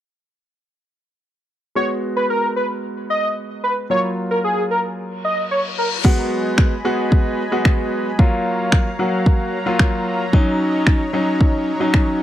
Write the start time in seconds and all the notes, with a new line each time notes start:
1.75 G#3 B3 F#4 C#5
2.16 B4
2.30 A#4
2.56 B4
3.10 D#5
3.64 B4
3.90 F#3 A#3 F4 C#5
4.31 A#4
4.44 G#4
4.71 A#4
4.98 reverse cymbal
5.25 D#5
5.51 C#5
5.78 A#4
6.04 F#3 G#3 B3 F#4 D#5 G#5 B5, kick, crash
6.58 finger snap, kick
6.85 G#3 B3 F#4
7.12 kick
7.52 G#3 B3 F#4
7.65 finger snap, kick
8.19 F#3 A#3 F4 C#5 F5 A#5, kick
8.72 finger snap, kick
8.99 F#3 A#3 F#4
9.26 kick
9.66 F#3 A#3 F4
9.79 finger snap, kick
10.33 F#3 C#4 D#4 D#5, kick
10.87 finger snap, kick
11.13 F#3 C#4 D#4
11.41 kick
11.80 F#3 C#4 D#4
11.94 finger snap, kick